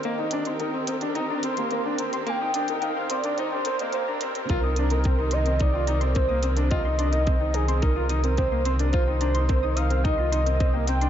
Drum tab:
HH |x-xxx-xxx-xxx-xx|x-xxx-xxx-xxx-xx|x-xxx-xxx-xxx-xx|x-xxx-xxx-xxx-xx|
BD |----------------|----------------|o---o---o---o---|o---o---o---o---|

HH |x-xxx-xxx-xxx-xx|
BD |o---o---o---o---|